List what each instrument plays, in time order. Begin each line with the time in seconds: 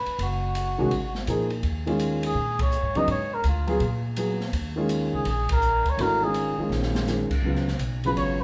Already playing: muted trumpet B4
0.06 muted upright bass stroke, ride
0.19 upright bass F#1, ride
0.23 muted trumpet F#4
0.55 hi-hat pedal, ride
0.78 upright bass C2, grand piano D#3 G#3 C#4 F#4
0.91 upright bass G#1, ride
1.15 snare
1.27 upright bass A#2, grand piano F3 A#3 D#4 G#4, hi-hat pedal, ride
1.50 ride
1.63 upright bass D#2, ride
1.86 grand piano D#3 G#3 C#4 F4, ride
1.99 hi-hat pedal, ride
2.23 muted trumpet G#4, ride
2.35 upright bass A#2
2.59 muted trumpet C#5, kick, ride
2.72 hi-hat pedal
2.83 upright bass G#2
2.95 upright bass F2, grand piano C#3 F#3 B3 D#4, muted trumpet D#5, ride
3.07 upright bass G#2, muted trumpet C#5, ride
3.34 muted trumpet A#4
3.44 upright bass D2, hi-hat pedal, ride
3.48 muted trumpet F4
3.67 grand piano F#3 B3 F4 G#4, ride
3.80 upright bass A#2, ride
4.16 grand piano F#3 B3 F4 G#4, hi-hat pedal, ride
4.41 snare
4.52 upright bass D#2, ride
4.76 grand piano D#3 G#3 C#4 F4
4.89 hi-hat pedal, ride
5.13 upright bass C#2, muted trumpet G#4
5.25 upright bass A#1, muted trumpet G#4, ride
5.49 muted trumpet A#4, kick, ride
5.62 hi-hat pedal
5.85 upright bass D2, ride
5.90 muted trumpet C#5
5.97 upright bass G#1, grand piano E3 A3 D4 F#4, ride
6.02 muted trumpet A#4
6.22 grand piano D#3 G#3 C#4 F4, muted trumpet G#4
6.34 hi-hat pedal, ride
6.58 grand piano D#3 G#3 C#4 F4, muted upright bass stroke
6.69 upright bass A#1, snare
6.83 snare
6.95 snare
7.07 grand piano D#3 G#3 C#4 F4, snare, hi-hat pedal
7.31 muted upright bass stroke, kick, crash
7.43 upright bass C#2, grand piano C#3 F#3 B3
7.47 grand piano F4
7.55 snare
7.68 snare
7.79 upright bass B1, hi-hat pedal, ride
8.04 grand piano C#3 F#3 B3 F4, muted trumpet B4, ride
8.16 upright bass G#1, muted trumpet C#5, ride